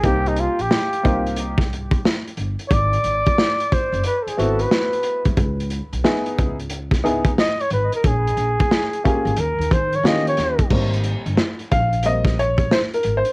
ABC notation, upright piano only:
X:1
M:4/4
L:1/8
Q:"Swing 16ths" 1/4=90
K:Ab
V:1 name="Upright piano"
[B,CEG] z2 [B,CEF] z4 | z4 z [=B,C=E_G]3 | z2 [_CE_FA] z2 [CEFA] z2 | z3 [B,DFG] z2 [B,DFG] z |
[G,B,C] z2 f [G,B,Ce] d (3c B c |]